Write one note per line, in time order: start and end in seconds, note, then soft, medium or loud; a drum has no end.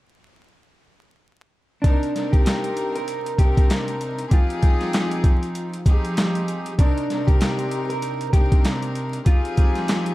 1.82 2.13 C3 medium
1.82 2.13 C4 medium
1.82 2.29 D4 medium
1.82 2.13 D4 medium
1.82 2.14 D#4 medium
1.82 kick loud
1.82 closed hi-hat medium
1.86 2.14 A#4 loud
2.03 closed hi-hat medium
2.15 3.30 C3 loud
2.15 3.31 C4 medium
2.15 3.31 D4 medium
2.15 3.31 D#4 medium
2.15 3.32 A#4 loud
2.15 snare soft
2.15 closed hi-hat medium
2.32 2.44 G4 medium
2.32 kick medium
2.32 closed hi-hat soft
2.45 2.92 G4 medium
2.45 snare loud
2.45 clap loud
2.45 closed hi-hat loud
2.64 closed hi-hat medium
2.77 closed hi-hat medium
2.96 3.36 A#4 medium
2.96 closed hi-hat medium
3.08 closed hi-hat medium
3.26 closed hi-hat medium
3.37 4.25 C3 loud
3.37 4.25 C4 medium
3.37 4.25 D4 medium
3.37 4.26 D#4 medium
3.37 3.67 G4 medium
3.37 4.26 A#4 loud
3.37 kick medium
3.37 closed hi-hat medium
3.57 kick loud
3.57 closed hi-hat medium
3.70 snare loud
3.70 clap medium
3.70 closed hi-hat loud
3.88 closed hi-hat medium
4.01 closed hi-hat medium
4.19 closed hi-hat medium
4.28 5.74 F3 loud
4.28 5.75 C4 medium
4.28 5.75 D#4 medium
4.28 5.75 G4 medium
4.28 5.75 G#4 loud
4.28 kick loud
4.28 closed hi-hat medium
4.33 6.32 F4 loud
4.50 closed hi-hat medium
4.63 kick medium
4.63 closed hi-hat medium
4.81 snare soft
4.81 closed hi-hat soft
4.93 snare loud
4.93 clap loud
4.93 closed hi-hat loud
5.11 closed hi-hat medium
5.24 kick loud
5.24 closed hi-hat medium
5.43 closed hi-hat soft
5.55 closed hi-hat medium
5.73 closed hi-hat medium
5.85 6.72 F3 loud
5.85 6.73 C4 medium
5.85 6.73 D#4 medium
5.85 6.73 G4 medium
5.85 6.74 G#4 loud
5.85 kick medium
5.85 closed hi-hat medium
6.05 closed hi-hat medium
6.17 snare loud
6.17 clap medium
6.17 closed hi-hat loud
6.35 closed hi-hat medium
6.48 closed hi-hat medium
6.66 closed hi-hat medium
6.78 7.08 C3 medium
6.78 7.08 C4 medium
6.78 7.08 D4 medium
6.78 7.26 D4 medium
6.78 7.08 D#4 medium
6.78 7.09 A#4 loud
6.78 kick loud
6.78 closed hi-hat medium
6.98 closed hi-hat medium
7.10 8.25 C3 loud
7.10 8.26 C4 medium
7.10 8.26 D4 medium
7.10 8.26 D#4 medium
7.10 8.27 A#4 loud
7.10 snare soft
7.10 closed hi-hat medium
7.27 7.39 G4 medium
7.27 kick medium
7.27 closed hi-hat soft
7.41 7.87 G4 medium
7.41 snare loud
7.41 clap loud
7.41 closed hi-hat loud
7.59 closed hi-hat medium
7.71 closed hi-hat medium
7.90 8.31 A#4 medium
7.90 closed hi-hat medium
8.02 closed hi-hat medium
8.21 closed hi-hat medium
8.32 9.19 C3 loud
8.32 9.20 C4 medium
8.32 9.20 D4 medium
8.32 9.20 D#4 medium
8.32 8.61 G4 medium
8.32 9.21 A#4 loud
8.32 kick medium
8.32 closed hi-hat medium
8.52 kick loud
8.52 closed hi-hat medium
8.65 snare loud
8.65 clap medium
8.65 closed hi-hat loud
8.82 closed hi-hat medium
8.95 closed hi-hat medium
9.13 closed hi-hat medium
9.23 10.14 F3 loud
9.23 10.14 C4 medium
9.23 10.14 D#4 medium
9.23 10.14 G4 medium
9.23 10.14 G#4 loud
9.23 kick loud
9.23 closed hi-hat medium
9.27 10.14 F4 loud
9.45 closed hi-hat soft
9.57 kick medium
9.57 closed hi-hat medium
9.75 snare soft
9.75 closed hi-hat soft
9.88 snare loud
9.88 clap loud
9.88 closed hi-hat loud
10.06 closed hi-hat medium